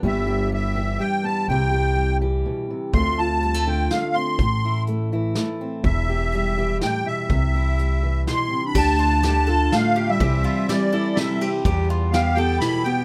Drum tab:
CC |------|------|------|------|
RD |------|------|------|------|
HH |------|------|x-x-x-|x-x-x-|
SD |------|------|----o-|----o-|
BD |------|------|o-----|o-----|

CC |------|------|x-----|------|
RD |------|------|--x-x-|x-x-xx|
HH |x-x-x-|x-x-x-|------|------|
SD |----o-|----o-|--o-o-|--o-o-|
BD |o-----|o-----|o-----|o-----|

CC |------|
RD |x-x-x-|
HH |------|
SD |--o-o-|
BD |o-----|